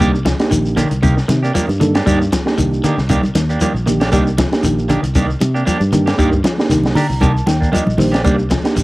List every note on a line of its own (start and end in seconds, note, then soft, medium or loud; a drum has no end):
0.00 0.33 C2 medium
0.00 0.14 D#3 medium
0.00 0.15 G3 medium
0.00 0.13 A#3 medium
0.00 0.17 A#3 medium
0.00 0.17 D4 medium
0.00 0.13 D4 loud
0.00 0.17 D#4 medium
0.00 0.17 G4 medium
0.00 0.13 G4 loud
0.00 kick medium
0.00 closed hi-hat medium
0.00 low conga medium
0.00 shekere medium
0.14 muted clean electric guitar stroke soft
0.14 shekere soft
0.25 0.41 F3 medium
0.25 muted clean electric guitar stroke soft
0.25 kick medium
0.25 snare medium
0.25 closed hi-hat medium
0.25 high conga medium
0.25 shekere medium
0.39 0.84 A#3 medium
0.39 0.84 D4 medium
0.39 0.84 D#4 medium
0.39 0.84 G4 medium
0.39 muted fingered electric bass stroke soft
0.39 snare medium
0.39 closed hi-hat medium
0.39 shekere soft
0.51 0.84 A#1 medium
0.51 0.67 D#3 medium
0.51 muted clean electric guitar stroke soft
0.51 closed hi-hat medium
0.51 shekere medium
0.66 shekere soft
0.76 0.93 D3 medium
0.76 0.91 D#3 medium
0.76 0.90 A#3 medium
0.76 0.90 D4 medium
0.76 0.89 G4 medium
0.76 closed hi-hat medium
0.76 low conga medium
0.76 shekere medium
0.90 1.23 C2 medium
0.90 muted clean electric guitar stroke soft
0.90 closed hi-hat soft
0.90 shekere soft
1.03 1.19 C3 medium
1.03 1.17 D#3 medium
1.03 1.16 A#3 medium
1.03 1.16 G4 medium
1.03 muted clean electric guitar stroke medium
1.03 kick medium
1.03 closed hi-hat medium
1.03 high conga medium
1.03 low conga medium
1.03 shekere medium
1.17 muted clean electric guitar stroke soft
1.17 snare soft
1.17 shekere soft
1.28 1.50 C3 medium
1.28 1.44 D#3 medium
1.28 muted clean electric guitar stroke soft
1.28 snare soft
1.28 closed hi-hat medium
1.28 high conga medium
1.28 shekere medium
1.43 1.53 A#3 soft
1.43 1.54 D4 medium
1.43 1.54 G4 medium
1.43 shekere soft
1.54 1.68 D#3 medium
1.54 1.71 F3 medium
1.54 1.67 A#3 medium
1.54 1.67 D4 medium
1.54 1.66 G4 medium
1.54 closed hi-hat medium
1.54 high conga medium
1.54 shekere medium
1.68 2.00 G2 medium
1.68 muted clean electric guitar stroke medium
1.68 high conga medium
1.68 shekere soft
1.80 1.96 D#3 medium
1.80 1.92 A#3 medium
1.80 1.92 D4 medium
1.80 1.93 D#4 medium
1.80 1.93 A4 medium
1.80 muted clean electric guitar stroke soft
1.80 closed hi-hat medium
1.80 low conga medium
1.80 shekere medium
1.95 2.06 A#3 soft
1.95 2.06 D4 medium
1.95 2.06 G4 soft
1.95 snare medium
1.95 closed hi-hat medium
1.95 shekere soft
2.06 2.28 G2 loud
2.06 2.20 D#3 medium
2.06 2.22 G3 medium
2.06 2.24 A#3 medium
2.06 2.20 A#3 medium
2.06 2.24 D4 medium
2.06 2.20 D4 loud
2.06 2.24 D#4 medium
2.06 2.24 G4 medium
2.06 2.20 G4 loud
2.06 kick medium
2.06 closed hi-hat medium
2.06 low conga medium
2.06 shekere medium
2.21 muted clean electric guitar stroke soft
2.21 shekere soft
2.32 2.48 F3 medium
2.32 muted clean electric guitar stroke soft
2.32 kick medium
2.32 snare medium
2.32 closed hi-hat medium
2.32 high conga medium
2.32 shekere medium
2.45 2.90 A#3 medium
2.45 2.90 D4 medium
2.45 2.90 D#4 medium
2.45 2.91 G4 medium
2.45 snare medium
2.45 shekere soft
2.58 2.79 C2 loud
2.58 2.74 D#3 medium
2.58 muted clean electric guitar stroke soft
2.58 closed hi-hat medium
2.58 shekere medium
2.73 shekere soft
2.84 3.00 D3 medium
2.84 2.98 D#3 medium
2.84 2.97 A#3 medium
2.84 2.97 D4 medium
2.84 2.98 G4 medium
2.84 closed hi-hat medium
2.84 low conga medium
2.84 shekere medium
2.98 3.29 C2 loud
2.98 muted clean electric guitar stroke soft
2.98 snare soft
2.98 shekere soft
3.09 3.26 C3 medium
3.09 3.24 D#3 medium
3.09 3.23 A#3 medium
3.09 3.23 D4 medium
3.09 3.23 G4 medium
3.09 kick medium
3.09 closed hi-hat medium
3.09 high conga medium
3.09 low conga medium
3.09 shekere medium
3.23 muted clean electric guitar stroke soft
3.23 high conga medium
3.23 shekere soft
3.35 3.57 D#2 medium
3.35 3.52 D#3 medium
3.35 muted clean electric guitar stroke soft
3.35 snare soft
3.35 closed hi-hat medium
3.35 high conga medium
3.35 shekere medium
3.49 3.61 A#3 soft
3.49 3.61 D4 medium
3.49 3.61 G4 medium
3.49 shekere soft
3.61 3.75 D#3 medium
3.61 3.77 F3 medium
3.61 3.74 A#3 medium
3.61 3.74 D4 medium
3.61 3.74 G4 medium
3.61 closed hi-hat medium
3.61 high conga medium
3.61 shekere medium
3.74 4.13 A#1 medium
3.74 muted clean electric guitar stroke soft
3.74 shekere soft
3.86 4.03 D#3 medium
3.86 3.99 A#3 medium
3.86 3.99 D4 medium
3.86 3.99 D#4 medium
3.86 4.00 G4 medium
3.86 muted clean electric guitar stroke soft
3.86 closed hi-hat soft
3.86 low conga medium
3.86 shekere medium
4.00 4.11 A#3 soft
4.00 4.11 D4 medium
4.00 4.11 G4 medium
4.00 snare medium
4.00 closed hi-hat medium
4.00 shekere soft
4.12 4.46 C2 loud
4.12 4.26 D#3 medium
4.12 4.29 G3 medium
4.12 4.30 A#3 medium
4.12 4.25 A#3 medium
4.12 4.30 D4 medium
4.12 4.25 D4 medium
4.12 4.30 D#4 medium
4.12 4.25 G4 loud
4.12 4.31 G4 medium
4.12 kick medium
4.12 closed hi-hat medium
4.12 low conga medium
4.12 shekere medium
4.26 muted clean electric guitar stroke soft
4.26 shekere soft
4.38 4.55 F3 medium
4.38 muted clean electric guitar stroke soft
4.38 kick medium
4.38 snare medium
4.38 closed hi-hat soft
4.38 high conga loud
4.38 shekere medium
4.51 4.96 A#3 medium
4.51 4.97 D4 medium
4.51 4.97 D#4 medium
4.51 4.97 G4 medium
4.51 muted fingered electric bass stroke soft
4.51 snare medium
4.51 closed hi-hat medium
4.51 shekere soft
4.63 4.97 A#1 medium
4.63 4.80 D#3 medium
4.63 muted clean electric guitar stroke soft
4.63 closed hi-hat medium
4.63 shekere medium
4.79 shekere soft
4.88 5.06 D3 medium
4.88 5.03 D#3 medium
4.88 5.03 A#3 medium
4.88 5.02 D4 medium
4.88 5.02 G4 medium
4.88 closed hi-hat soft
4.88 low conga medium
4.88 shekere medium
5.03 5.35 C2 medium
5.03 muted clean electric guitar stroke soft
5.03 closed hi-hat soft
5.03 shekere soft
5.15 5.32 C3 medium
5.15 5.30 D#3 medium
5.15 5.28 A#3 medium
5.15 5.28 D4 medium
5.15 5.27 G4 medium
5.15 kick medium
5.15 closed hi-hat medium
5.15 high conga medium
5.15 shekere medium
5.29 muted clean electric guitar stroke soft
5.29 shekere soft
5.40 5.62 C3 medium
5.40 muted clean electric guitar stroke soft
5.40 closed hi-hat soft
5.40 high conga loud
5.40 shekere medium
5.54 5.65 A#3 soft
5.54 5.65 D4 soft
5.54 5.66 G4 medium
5.54 shekere soft
5.66 5.83 F3 medium
5.66 5.80 A#3 medium
5.66 5.81 D4 medium
5.66 5.79 G4 medium
5.66 muted clean electric guitar stroke medium
5.66 closed hi-hat medium
5.66 high conga medium
5.66 shekere medium
5.80 6.12 G2 medium
5.80 muted clean electric guitar stroke soft
5.80 high conga medium
5.80 shekere soft
5.92 6.09 D#3 medium
5.92 6.05 A#3 medium
5.92 6.05 D4 medium
5.92 6.05 D#4 medium
5.92 6.06 G4 medium
5.92 muted clean electric guitar stroke soft
5.92 closed hi-hat soft
5.92 high conga medium
5.92 low conga medium
5.92 shekere medium
6.06 6.17 A#3 soft
6.06 6.17 D4 soft
6.06 6.18 G4 medium
6.06 snare medium
6.06 closed hi-hat medium
6.06 shekere soft
6.17 6.40 G2 loud
6.17 6.32 D#3 medium
6.17 6.35 G3 medium
6.17 6.36 A#3 medium
6.17 6.31 A#3 medium
6.17 6.36 D4 medium
6.17 6.31 D4 medium
6.17 6.36 D#4 medium
6.17 6.36 G4 medium
6.17 6.31 G4 medium
6.17 kick medium
6.17 closed hi-hat medium
6.17 shekere medium
6.32 muted clean electric guitar stroke soft
6.32 kick medium
6.32 shekere soft
6.44 6.60 F3 medium
6.44 muted clean electric guitar stroke soft
6.44 snare medium
6.44 closed hi-hat medium
6.44 high conga medium
6.44 shekere medium
6.58 7.03 A#3 medium
6.58 7.03 D4 medium
6.58 7.03 D#4 medium
6.58 7.03 G4 medium
6.58 snare medium
6.58 shekere soft
6.69 6.91 C2 medium
6.69 6.87 D#3 medium
6.69 muted clean electric guitar stroke soft
6.69 snare soft
6.69 closed hi-hat medium
6.69 shekere medium
6.84 snare medium
6.84 high conga medium
6.84 shekere soft
6.95 7.12 D3 medium
6.95 7.08 D4 medium
6.95 7.08 G4 medium
6.95 7.20 A#5 medium
6.95 muted clean electric guitar stroke medium
6.95 open hi-hat medium
6.95 low conga medium
6.95 shekere medium
7.09 7.41 C2 medium
7.09 muted clean electric guitar stroke soft
7.09 shekere soft
7.21 7.38 C3 medium
7.21 7.35 D#3 medium
7.21 7.34 A#3 medium
7.21 7.34 D4 medium
7.21 7.33 G4 medium
7.21 7.45 A5 medium
7.21 kick medium
7.21 closed hi-hat medium
7.21 high conga medium
7.21 shekere medium
7.34 muted clean electric guitar stroke medium
7.34 shekere soft
7.46 7.69 D#2 medium
7.46 7.64 D#3 medium
7.46 7.71 G5 medium
7.46 muted clean electric guitar stroke soft
7.46 snare soft
7.46 closed hi-hat medium
7.46 high conga medium
7.46 shekere medium
7.60 7.71 A#3 soft
7.60 7.71 D4 soft
7.60 kick medium
7.60 shekere soft
7.72 7.86 D#3 medium
7.72 7.90 F3 medium
7.72 7.86 A#3 medium
7.72 7.85 D4 medium
7.72 7.85 G4 medium
7.72 7.97 D#5 medium
7.72 closed hi-hat medium
7.72 high conga medium
7.72 shekere medium
7.86 8.26 A#1 medium
7.86 muted clean electric guitar stroke soft
7.86 high conga medium
7.86 shekere soft
7.98 8.15 D#3 medium
7.98 8.11 A#3 medium
7.98 8.11 D4 medium
7.98 8.11 D#4 medium
7.98 8.11 G4 medium
7.98 8.23 C5 medium
7.98 muted clean electric guitar stroke soft
7.98 open hi-hat medium
7.98 high conga medium
7.98 low conga medium
7.98 shekere medium
8.12 8.23 A#3 soft
8.12 8.23 D4 soft
8.12 8.23 G4 medium
8.12 snare medium
8.12 closed hi-hat medium
8.12 shekere soft
8.24 8.58 C2 loud
8.24 8.41 G3 medium
8.24 8.42 A#3 medium
8.24 8.38 A#3 medium
8.24 8.42 D4 medium
8.24 8.38 D4 medium
8.24 8.42 D#4 medium
8.24 8.37 G4 medium
8.24 8.43 G4 medium
8.24 muted clean electric guitar stroke medium
8.24 kick medium
8.24 closed hi-hat medium
8.24 low conga medium
8.24 shekere medium
8.38 muted clean electric guitar stroke soft
8.38 shekere soft
8.50 8.67 F3 medium
8.50 muted clean electric guitar stroke soft
8.50 kick medium
8.50 snare medium
8.50 closed hi-hat medium
8.50 high conga medium
8.50 shekere medium
8.63 8.84 A#3 medium
8.63 8.84 D4 medium
8.63 8.84 D#4 medium
8.63 8.84 G4 medium
8.63 muted fingered electric bass stroke soft
8.63 snare medium
8.63 closed hi-hat medium
8.63 shekere soft
8.76 8.84 A#1 medium
8.76 muted clean electric guitar stroke soft
8.76 closed hi-hat medium
8.76 shekere medium